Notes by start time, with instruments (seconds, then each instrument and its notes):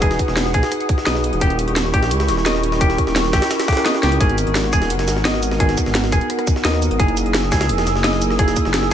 Already playing: detuned saw bass E1, tine electric piano F#4 G#4 B4, analog synth pad G#4 F#5 D#6
0.00 tine electric piano D#4 F#4 G#4 B4, clean electric guitar G#4, kick, closed hi-hat
0.11 snare, closed hi-hat
0.19 kick, closed hi-hat
0.28 detuned saw bass E1, snare
0.37 snare, closed hi-hat
0.46 snare
0.54 detuned saw bass B1, clean electric guitar G#4, kick, closed hi-hat
0.63 snare, closed hi-hat
0.72 cross-stick, closed hi-hat
0.80 closed hi-hat
0.89 kick, closed hi-hat
0.98 snare
1.06 detuned saw bass B1, tine electric piano D#4 F#4 G#4 B4, clean electric guitar D#5, snare, closed hi-hat
1.15 snare
1.24 closed hi-hat
1.33 detuned saw bass E1, closed hi-hat
1.40 detuned saw bass D#1, tine electric piano C#4 E4 G4 A#4, analog synth pad E4 G4 C#6, clean electric guitar G4, kick, closed hi-hat
1.50 closed hi-hat
1.59 closed hi-hat
1.68 detuned saw bass D#1, closed hi-hat
1.76 snare, closed hi-hat
1.85 snare
1.94 detuned saw bass A#1, clean electric guitar G4, kick, cross-stick, closed hi-hat
2.03 snare, closed hi-hat
2.11 detuned saw bass C#2, closed hi-hat
2.20 snare, closed hi-hat
2.28 detuned saw bass D#1, snare, closed hi-hat
2.37 snare
2.45 tine electric piano C#4 E4 G4 A#4, clean electric guitar D#5, snare, closed hi-hat
2.55 cross-stick, snare
2.63 closed hi-hat
2.72 cross-stick, snare
2.80 tine electric piano C#4 E4 G4 A#4, clean electric guitar G4, kick, closed hi-hat
2.90 snare, closed hi-hat
2.98 kick, closed hi-hat
3.07 detuned saw bass D#1, snare
3.16 snare, closed hi-hat
3.25 snare
3.33 detuned saw bass A#1, clean electric guitar G4, kick, cross-stick, snare, closed hi-hat
3.42 snare, closed hi-hat
3.51 cross-stick, snare, closed hi-hat
3.60 cross-stick, snare, closed hi-hat
3.68 clean electric guitar G4, kick, snare, closed hi-hat
3.73 tine electric piano C#4, snare, closed hi-hat
3.77 tine electric piano E4 G4 A#4, snare, closed hi-hat
3.86 clean electric guitar D#5, snare, closed hi-hat
3.95 snare
4.03 detuned saw bass C#2, clean electric guitar G4, snare, closed hi-hat
4.12 closed hi-hat
4.20 detuned saw bass G#1, tine electric piano B3 D#4 F#4 A#4, clean electric guitar G#4, analog synth pad A#4 F#5, kick, closed hi-hat
4.29 closed hi-hat
4.38 closed hi-hat, shaker
4.47 detuned saw bass G#1, closed hi-hat
4.55 snare, closed hi-hat
4.64 snare
4.73 detuned saw bass D#1, clean electric guitar G#4, kick, cross-stick, closed hi-hat, shaker
4.82 snare, closed hi-hat
4.90 detuned saw bass F#1, closed hi-hat
4.99 snare, closed hi-hat
5.08 detuned saw bass G#1, snare, closed hi-hat, shaker
5.17 snare
5.25 tine electric piano B3 D#4 F#4 A#4, clean electric guitar D#5, snare, closed hi-hat
5.34 cross-stick, snare
5.43 closed hi-hat, shaker
5.51 cross-stick, snare
5.59 tine electric piano B3 D#4 F#4 A#4, clean electric guitar G#4, kick, closed hi-hat
5.69 snare, closed hi-hat
5.77 kick, closed hi-hat, shaker
5.86 detuned saw bass G#1, snare
5.95 snare, closed hi-hat
6.04 snare
6.12 detuned saw bass D#1, clean electric guitar G#4, kick, closed hi-hat, shaker
6.21 closed hi-hat
6.30 cross-stick, closed hi-hat
6.39 cross-stick, closed hi-hat
6.47 kick, closed hi-hat, shaker
6.56 snare
6.64 detuned saw bass D#2, tine electric piano B3 D#4 F#4 A#4, clean electric guitar D#5, snare, closed hi-hat
6.74 snare
6.82 closed hi-hat, shaker
6.91 detuned saw bass G#1, closed hi-hat
6.99 detuned saw bass F#1, tine electric piano A#3 D#4 E4 G#4, clean electric guitar G#4, analog synth pad A#4 G#5 D#6 E6, kick, closed hi-hat
7.08 closed hi-hat
7.17 closed hi-hat, shaker
7.26 detuned saw bass F#1, closed hi-hat
7.34 snare, closed hi-hat
7.43 snare
7.52 detuned saw bass C#2, clean electric guitar G#4, kick, cross-stick, snare, closed hi-hat, shaker
7.61 snare, closed hi-hat
7.69 detuned saw bass E1, closed hi-hat
7.78 snare, closed hi-hat
7.87 detuned saw bass F#1, snare, closed hi-hat, shaker
7.96 snare
8.04 tine electric piano A#3 D#4 E4 G#4, clean electric guitar D#5, snare, closed hi-hat
8.13 cross-stick, snare
8.22 closed hi-hat, shaker
8.30 cross-stick, snare
8.38 tine electric piano A#3 D#4 E4 G#4, clean electric guitar G#4, kick, closed hi-hat
8.48 snare, closed hi-hat, shaker
8.56 kick, closed hi-hat, shaker
8.65 detuned saw bass F#1, snare
8.74 snare, closed hi-hat
8.83 snare